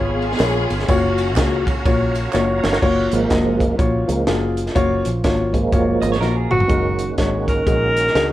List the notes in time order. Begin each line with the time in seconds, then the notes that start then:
Already playing: G#1 B3 F4 G#4 C#5 F5 B5
0.21 ride, tambourine
0.32 snare
0.40 A#1 B3 F4 G#4 C#5, snare, clap, ride, tambourine
0.70 G1, ride, tambourine
0.79 snare
0.88 F#1 A#3 C#4 F4 F#4 C#5 A#5, kick, ride, tambourine
1.18 ride, tambourine
1.36 C#2 A#3 F4 F#4 G#4, kick, snare, clap, ride, tambourine
1.67 kick, ride, tambourine
1.85 A#1 A#3 F4 F#4 C#5, kick, ride, tambourine
2.15 ride, tambourine
2.33 F#1 A#3 F4 F#4 C#5, snare, clap, tambourine
2.63 G1, snare, tambourine
2.73 snare
2.82 F#1 F3 A#3 C#4 F4 F#4 C#5, kick, crash
3.11 G#1 F3 G#3 A#3, closed hi-hat
3.30 F#1 A#3 F4 F#4 D#5, kick, snare, closed hi-hat
3.60 kick, closed hi-hat
3.78 A#1 A#3 F4 F#4 C#5, kick, closed hi-hat
4.08 C#2 F3 G#3 A#3, closed hi-hat
4.27 F#1 A#3 F4 F#4 G#4, snare, closed hi-hat
4.57 closed hi-hat
4.66 snare
4.75 F#1 A#3 F4 F#4 C#5, kick, closed hi-hat
5.05 A#1, closed hi-hat
5.24 G#1 A#3 F4 F#4 C#5, kick, snare, closed hi-hat
5.53 F3 G#3 A#3, kick, closed hi-hat
5.72 F#1 A#3 F4 F#4 C#5, kick, closed hi-hat
6.01 G#1 D#5, closed hi-hat
6.12 C#5, snare
6.20 A#1 A#3 F4 F#4 A#4, snare
6.36 G#4
6.50 G1 F#4, mid tom
6.60 F4, floor tom
6.67 F#1 D#3 G#3 A#3 C#4 D#4 F#4 A#4, kick, closed hi-hat
6.99 closed hi-hat
7.18 G#1 G#3 D#4 F#4 C#5, kick, snare, closed hi-hat
7.48 A#4, kick, closed hi-hat
7.66 A#1 G#3 D#4 F#4 G#4, kick, closed hi-hat
7.96 closed hi-hat
8.07 snare
8.15 C#2 G#3 D#4 F#4 G#4, snare, closed hi-hat